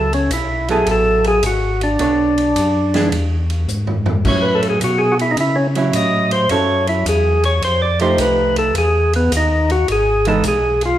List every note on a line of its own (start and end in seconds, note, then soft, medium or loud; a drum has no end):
0.00 0.29 C#2 medium
0.00 0.13 A4 medium
0.13 0.31 C#4 medium
0.13 ride soft
0.30 0.85 B1 medium
0.30 0.69 E4 medium
0.30 hi-hat pedal medium
0.30 ride medium
0.68 1.40 F#3 medium
0.68 1.41 B3 medium
0.68 1.41 E4 medium
0.68 0.88 G#4 medium
0.68 1.41 A4 medium
0.68 ride soft
0.86 1.41 A1 medium
0.86 ride medium
0.91 1.26 A4 medium
1.24 1.44 G#4 medium
1.24 ride soft
1.42 1.97 G#1 medium
1.42 hi-hat pedal medium
1.42 ride medium
1.46 1.82 F#4 medium
1.81 3.09 D4 medium
1.81 ride soft
1.99 2.54 B1 medium
1.99 2.34 B3 medium
1.99 2.34 D4 medium
1.99 2.34 A4 medium
1.99 2.35 C#5 medium
1.99 ride medium
2.38 ride soft
2.56 3.10 F#2 medium
2.56 hi-hat pedal medium
2.56 ride medium
2.94 3.11 E3 medium
2.94 3.11 B3 medium
2.94 3.11 D4 medium
2.94 3.11 G#4 medium
2.94 snare soft
2.94 ride soft
3.12 3.66 E2 medium
3.12 ride medium
3.50 ride soft
3.68 4.23 G#2 medium
3.68 hi-hat pedal medium
3.87 floor tom medium
4.06 floor tom medium
4.25 4.79 A2 medium
4.25 5.12 F#3 medium
4.25 5.12 C#4 medium
4.25 5.12 E4 medium
4.25 4.45 C#5 medium
4.25 kick medium
4.25 crash medium
4.42 4.61 B4 medium
4.55 4.68 A4 loud
4.63 ride soft
4.70 4.80 G#4 medium
4.81 5.36 B2 medium
4.81 5.01 F#4 medium
4.81 hi-hat pedal medium
4.81 ride medium
4.98 5.18 G#4 medium
5.12 5.15 F#4 medium
5.19 5.32 E4 medium
5.19 ride soft
5.31 5.37 D#4 medium
5.37 5.92 C#3 medium
5.37 5.57 E4 medium
5.37 ride medium
5.56 5.67 C#4 medium
5.75 6.46 F#3 medium
5.75 6.47 C#4 medium
5.75 6.47 E4 medium
5.75 ride soft
5.93 6.48 A2 medium
5.93 6.31 D#5 medium
5.93 hi-hat pedal medium
5.93 ride medium
6.31 6.50 C5 medium
6.31 ride soft
6.49 7.04 F#2 medium
6.49 7.37 F#3 medium
6.49 7.37 C#4 medium
6.49 7.37 E4 medium
6.49 7.37 A4 medium
6.49 6.87 C#5 medium
6.49 ride medium
6.87 7.06 E4 medium
6.87 ride soft
7.05 7.60 E2 medium
7.05 7.44 G#4 medium
7.05 hi-hat pedal medium
7.05 ride medium
7.43 7.62 C#5 loud
7.43 ride soft
7.62 8.17 F2 medium
7.62 7.82 C5 medium
7.62 ride medium
7.82 8.00 D5 loud
7.99 8.71 F3 medium
7.99 8.72 A3 medium
7.99 8.72 D#4 medium
7.99 8.72 G4 medium
7.99 8.19 C5 medium
7.99 ride soft
8.17 8.73 C2 medium
8.17 8.57 B4 medium
8.17 hi-hat pedal medium
8.17 ride medium
8.56 8.75 A4 medium
8.56 ride medium
8.74 9.29 E2 medium
8.74 9.13 G#4 medium
8.74 ride medium
9.13 9.32 B3 medium
9.13 ride soft
9.31 9.86 D#2 loud
9.31 hi-hat pedal medium
9.31 ride medium
9.37 9.71 D#4 medium
9.70 9.88 F#4 medium
9.70 ride soft
9.88 10.42 G#1 medium
9.88 ride medium
9.92 10.27 G#4 medium
10.25 10.43 E3 medium
10.25 10.43 G#3 medium
10.25 10.43 B3 medium
10.25 10.43 D#4 medium
10.25 10.45 A4 loud
10.25 ride soft
10.44 10.98 B1 loud
10.44 hi-hat pedal medium
10.44 ride medium
10.48 10.83 G#4 medium
10.81 ride medium
10.85 10.98 F4 medium